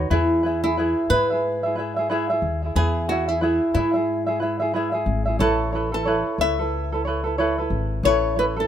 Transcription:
Already playing: D#4 F#4
0.10 E2 E4 G#4 B4 E5
0.43 E4 G#4 B4 E5
0.64 E4 G#4 E5
0.77 E4 G#4 B4 E5
1.10 G#2 E4 G#4 B4 E5
1.30 E4 G#4 E5
1.63 E4 G#4 E5
1.75 E4 G#4 B4 E5
1.96 E4 G#4 E5
2.09 E4 G#4 B4 E5
2.30 E4 G#4 E5
2.42 D#2
2.62 E4 G#4 E5
2.75 E2 E4 G#4 B4 E5
3.08 E4 F#4 G#4 B4 E5
3.28 E4 G#4 E5
3.41 E4 G#4 B4 E5
3.74 G#2 E4 G#4 B4 E5
3.94 E4 G#4 E5
4.27 E4 G#4 E5
4.40 E4 G#4 B4 E5
4.60 E4 G#4 E5
4.74 E4 G#4 B4 E5
4.92 E4 G#4 E5
5.06 G#1
5.26 E4 G#4 E5
5.39 A1 E4 A4 B4 C#5
5.72 E4 A4 B4 C#5
5.92 E4 A4 B4
6.05 E4 A4 B4 C#5
6.38 C#2 E4 B4 C#5 E5
6.42 A4
6.59 E4 A4 B4
6.92 E4 A4 B4
7.05 E4 A4 B4 C#5
7.24 E4 A4 B4
7.38 E4 A4 B4 C#5
7.58 E4 A4 B4
7.70 G#1
8.03 A1 E4 A4 B4 C#5
8.36 E4 A4 B4 C#5
8.56 E4 A4 B4

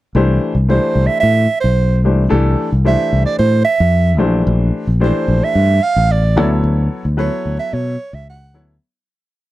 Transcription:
0.15 C2 E3 A3 D4 G4 C5
0.55 C2
0.68 E3 A3 D4 G4 C5
0.95 C2
1.07 E5
1.20 A2 E5
1.60 B1 C5
2.04 C2 E3 A3 D4 G4 C5
2.29 C2 E3 A3 D4 G4 A4
2.72 C2
2.85 E3 A3 D4 G4 C5 E5
3.13 C2
3.26 D5
3.39 A2 C5
3.65 E5
3.80 F2
4.18 A#1 E3 A3 D4 G4 C5
4.47 A#1
4.87 A#1
5.00 E3 A3 D4 G4 C5
5.05 C5
5.28 A#1
5.44 E5
5.55 G2
5.83 F5
5.96 A1
6.12 D5
6.36 D2 F#3 B3 E4 A4 C#5
6.64 D2
7.05 D2
7.17 F#3 B3 E4 A4 B4 C#5
7.45 D2
7.59 E5
7.73 B2 C#5
8.13 C#2 E5
8.30 F#5
8.54 D2 F#3 B3 E4 A4 C#5

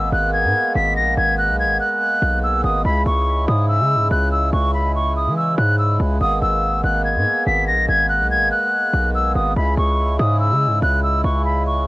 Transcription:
Already playing: G#1 G#3 A#3 B3
0.12 G#1 F#6
0.33 G#6
0.44 G#2
0.75 G#1 B6
0.96 A#1 A#6
1.17 G#1 G#6
1.38 F#6
1.49 B1
1.60 G#6
1.65 G#1
1.80 F#6
2.22 B1
2.44 E6
2.64 G#1 D#6
2.85 C#2 C#3 E4 B5
3.06 C#2 C#6
3.48 G#2 D#6
3.68 E6
3.80 C#3
3.96 G#2
4.11 C#2 F#6
4.32 E6
4.53 C#2 C#6
4.74 B5
4.96 C#6
5.16 D#6
5.27 E3
5.37 E6
5.58 G#2 F#6
5.78 E6
6.00 C#2
6.21 G#1 A#3 B3 D#6
6.42 G#1 E6
6.84 G#1 F#6
7.04 G#6
7.16 G#2
7.47 G#1 B6
7.67 A#1 A#6
7.89 G#1 G#6
8.09 F#6
8.21 B1
8.31 G#6
8.36 G#1
8.51 F#6
8.94 B1
9.15 E6
9.35 G#1 D#6
9.56 C#2 C#3 G#3 E4 B5
9.77 C#2 C#6
10.19 G#2 D#6
10.40 E6
10.51 C#3
10.67 G#2
10.82 C#2 F#6
11.03 E6
11.24 C#2 C#6
11.45 B5
11.67 C#6

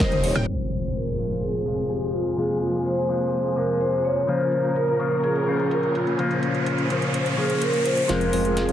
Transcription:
Already playing: D#3 C4 G4 C5
0.00 D#1 G3 C4 D#4 A#4 C5 D#5
0.12 closed hi-hat, mid tom
0.24 C#5, open hi-hat
0.35 D#1 G3 C4 D#4 A#4 G5, closed hi-hat, mid tom, high woodblock
0.46 F2 C3 F3 G#3 C4 F4 G#4 C5, closed hi-hat, impact
0.95 A#4, closed hi-hat
1.18 C3 F3 G#3 F4
1.43 G#4, closed hi-hat
1.65 C3 F3 G#3 F4
1.90 G4, closed hi-hat
2.02 closed hi-hat
2.14 F4, closed hi-hat
2.26 closed hi-hat
2.37 C3 F3 G#3 A#3 F4 G#4, closed hi-hat
2.50 closed hi-hat
2.62 F4, closed hi-hat
2.74 closed hi-hat
2.86 C5, closed hi-hat
2.98 closed hi-hat
3.09 C3 F3 G#3 F4, closed hi-hat
3.21 closed hi-hat
3.33 closed hi-hat
3.45 closed hi-hat
3.56 C3 F3 G#3 F4 A#4
3.69 closed hi-hat
3.81 C5, closed hi-hat
3.93 closed hi-hat
4.05 C#5, closed hi-hat
4.17 closed hi-hat
4.27 A#2 C#3 F3 A#3 C#4 F4 A#4 C5, closed hi-hat, riser
4.40 closed hi-hat
4.52 closed hi-hat
4.64 closed hi-hat
4.76 A#4, closed hi-hat
4.88 closed hi-hat
4.99 C#3 F3 A#3 F4, closed hi-hat
5.12 closed hi-hat
5.24 G#4, closed hi-hat
5.36 closed hi-hat
5.46 C#3 F3 A#3 F4
5.59 closed hi-hat
5.71 A#4, closed hi-hat
5.83 closed hi-hat
5.95 F4, closed hi-hat
6.07 closed hi-hat
6.18 C#3 F3 A#3 F4 C5, closed hi-hat
6.31 closed hi-hat
6.43 closed hi-hat
6.55 closed hi-hat
6.66 closed hi-hat
6.78 closed hi-hat
6.90 C#3 F3 A#3 F4, closed hi-hat
7.02 closed hi-hat
7.14 closed hi-hat
7.26 closed hi-hat
7.37 C#3 F3 A#3 F4 G#4
7.50 closed hi-hat
7.62 A#4, closed hi-hat
7.74 closed hi-hat
7.85 C5, closed hi-hat
7.97 closed hi-hat
8.08 F1 C3 F3 G#3 C4 F4 G#4 A#4 C5 F5, snare, closed hi-hat, riser
8.21 closed hi-hat
8.33 F1 G#3 C4 F4 C5 F5, open hi-hat
8.45 closed hi-hat
8.57 G#4, snare, closed hi-hat
8.69 F1 G#3 C4 F4 C5 F5, closed hi-hat

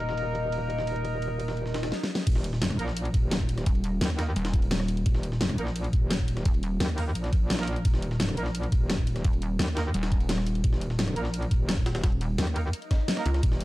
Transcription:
Already playing: D#1 A#3 D#4 A#4 D#5
0.00 ride
0.09 snare
0.17 ride
0.35 ride
0.52 ride
0.70 ride
0.79 snare
0.87 ride
0.96 ride
1.05 ride
1.22 ride
1.40 ride
1.48 snare
1.57 ride, swell
1.66 snare
1.74 snare, ride
1.83 snare, ride
1.92 snare
2.04 snare
2.15 snare
2.27 D#1, kick, closed hi-hat, ride, crash
2.36 snare
2.44 closed hi-hat, ride
2.53 snare
2.62 snare, closed hi-hat, ride
2.70 cross-stick, closed hi-hat, ride
2.79 A#1 A#3 D#4 A#4, closed hi-hat, ride
2.88 snare
2.97 closed hi-hat, ride
3.05 closed hi-hat
3.14 D#1, kick, closed hi-hat, ride
3.31 snare, closed hi-hat, ride
3.40 kick
3.49 closed hi-hat, ride
3.58 cross-stick, snare, closed hi-hat
3.66 D#1, kick, closed hi-hat, ride
3.75 ride
3.84 closed hi-hat, ride
4.01 D#2, snare, closed hi-hat, ride
4.10 cross-stick, closed hi-hat
4.19 A#3 D#4 A#4, snare, closed hi-hat, ride
4.36 D#1, closed hi-hat, ride
4.45 snare, closed hi-hat, ride
4.54 kick, closed hi-hat
4.62 ride
4.71 snare, closed hi-hat, ride
4.80 cross-stick, snare
4.88 closed hi-hat, ride
4.97 closed hi-hat
5.06 D#1, kick, closed hi-hat, ride
5.15 snare
5.23 closed hi-hat, ride
5.32 snare
5.41 snare, closed hi-hat, ride
5.49 cross-stick, closed hi-hat, ride
5.58 A#1 A#3 D#4 A#4, closed hi-hat, ride
5.67 snare
5.76 closed hi-hat, ride
5.84 closed hi-hat
5.93 D#1, kick, closed hi-hat
6.11 snare, closed hi-hat, ride
6.19 kick
6.28 closed hi-hat, ride
6.37 cross-stick, snare, closed hi-hat
6.45 D#1, kick, closed hi-hat, ride
6.54 ride
6.63 closed hi-hat, ride
6.80 D#2, snare, closed hi-hat, ride
6.89 cross-stick, closed hi-hat
6.98 A#3 D#4 A#4, closed hi-hat, open hi-hat
7.15 A#1, closed hi-hat, ride
7.24 snare, closed hi-hat
7.33 kick, closed hi-hat, ride
7.50 snare, closed hi-hat, ride
7.54 snare, ride
7.59 A#3 D#4 A#4, cross-stick, snare, ride
7.63 snare, ride
7.68 closed hi-hat, ride
7.76 closed hi-hat
7.85 D#1, kick, closed hi-hat, ride
7.94 snare
8.02 closed hi-hat, ride
8.11 snare
8.20 snare, closed hi-hat, ride
8.29 cross-stick, closed hi-hat, ride
8.37 A#1 A#3 D#4 A#4, closed hi-hat, ride
8.46 snare
8.55 closed hi-hat, ride
8.63 closed hi-hat
8.72 D#1, kick, closed hi-hat, ride
8.90 snare, closed hi-hat, ride
8.98 kick
9.07 closed hi-hat, ride
9.16 cross-stick, snare, closed hi-hat
9.24 D#1, kick, closed hi-hat, ride
9.33 ride
9.42 closed hi-hat, ride
9.59 D#2, snare, closed hi-hat, ride
9.68 cross-stick, closed hi-hat
9.77 A#3 D#4 A#4, snare, closed hi-hat, ride
9.94 D#1, closed hi-hat, ride
10.03 snare, closed hi-hat, ride
10.12 kick, closed hi-hat
10.20 ride
10.29 snare, closed hi-hat, ride
10.38 cross-stick, snare
10.47 closed hi-hat, ride
10.55 closed hi-hat
10.64 D#1, kick, closed hi-hat, ride
10.73 snare
10.81 closed hi-hat, ride
10.90 snare
10.99 snare, closed hi-hat, ride
11.08 cross-stick, closed hi-hat, ride
11.16 A#1 A#3 D#4 A#4, closed hi-hat, ride
11.25 snare
11.34 closed hi-hat, ride
11.42 closed hi-hat
11.51 D#1, kick, closed hi-hat, ride
11.69 snare, closed hi-hat, ride
11.77 kick
11.86 snare, closed hi-hat, ride
11.95 cross-stick, snare, closed hi-hat, ride
12.04 D#1, kick, snare, closed hi-hat, ride
12.12 ride
12.21 closed hi-hat, ride
12.38 D#2, snare, closed hi-hat, ride
12.47 cross-stick, closed hi-hat
12.56 A#3 D#4 A#4, closed hi-hat, ride
12.73 closed hi-hat, ride, swell
12.82 closed hi-hat
12.91 kick, snare, closed hi-hat, ride
13.08 snare, closed hi-hat, ride
13.17 A#3 D#4 A#4, cross-stick, snare, ride
13.26 C#2, closed hi-hat, ride
13.34 cross-stick, snare, closed hi-hat
13.43 D#1 A#3 D#4 A#4, kick, closed hi-hat, ride
13.52 snare
13.61 closed hi-hat, ride

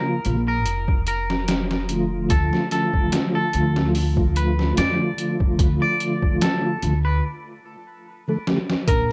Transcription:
Already playing: C#3 F3 A#3 F4 A#4
0.25 A#1 C#3 F3 A#3 F4, closed hi-hat
0.48 A#4
0.66 F1, closed hi-hat
0.88 kick
1.07 A#4, closed hi-hat
1.30 snare
1.48 snare, closed hi-hat
1.71 snare
1.89 D3 F3 A3 F4, closed hi-hat
2.30 D2 A4, kick, closed hi-hat
2.53 snare
2.71 A4, snare, closed hi-hat
2.94 kick
3.12 snare, closed hi-hat
3.35 A4
3.53 D2, closed hi-hat
3.76 snare
3.95 open hi-hat
4.17 kick
4.36 B4, closed hi-hat
4.59 snare
4.77 F2 D5, snare, closed hi-hat
5.17 D3 F3 A3 F4, closed hi-hat
5.40 kick
5.59 D2, kick, closed hi-hat
5.82 D5
6.00 closed hi-hat
6.22 kick
6.41 A4, snare, closed hi-hat
6.82 D2 D3 F3 A3 F4, closed hi-hat
7.05 B4
8.28 D3 F3 A3 A4
8.47 D3 F3 A3 G4, snare
8.70 snare
8.88 A#1 A#4, kick, closed hi-hat

